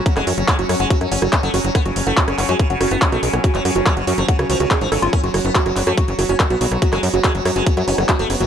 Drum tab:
HH |xxoxxxoxxxoxxxox|xxoxxxoxxxoxxxox|xxoxxxoxxxoxxxox|xxoxxxoxxxoxxxo-|
CP |-x--x-------x---|----x-x-----x---|-x--x-------x---|----x-x-----x---|
SD |-r--r-r--r-r--r-|r--r-r--r-r--r-r|--r-r--r-r--r-r-|r-r--r-r--r-r--r|
BD |o---o---o---o---|o---o---o---o---|o---o---o---o---|o---o---o---o---|

HH |xxoxxxoxxxoxxxox|
CP |-x--x-------x---|
SD |-r--r-r--r-r--r-|
BD |o---o---o---o---|